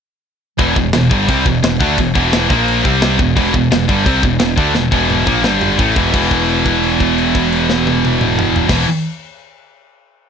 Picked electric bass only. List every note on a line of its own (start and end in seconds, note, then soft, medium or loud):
0.59 0.75 E1 medium
0.76 0.92 E1 medium
0.94 1.10 E1 medium
1.11 1.27 G1 medium
1.29 1.45 C2 medium
1.46 1.62 E1 medium
1.63 1.79 E1 medium
1.80 1.97 D2 medium
1.98 2.14 E1 medium
2.16 2.48 E1 loud
2.51 2.82 A#1 loud
2.85 3.17 C2 loud
3.19 3.35 E1 medium
3.37 3.53 E1 medium
3.54 3.70 E1 medium
3.71 3.87 E1 medium
3.89 4.05 G1 medium
4.06 4.22 C2 loud
4.23 4.39 E1 medium
4.40 4.56 E1 medium
4.57 4.73 D2 loud
4.75 4.91 E1 medium
4.92 5.24 E1 loud
5.27 5.43 A#1 loud
5.44 5.76 G1 loud
5.79 5.95 A1 medium
5.96 6.12 E1 medium
6.14 8.61 E1 medium
8.69 8.84 E1 medium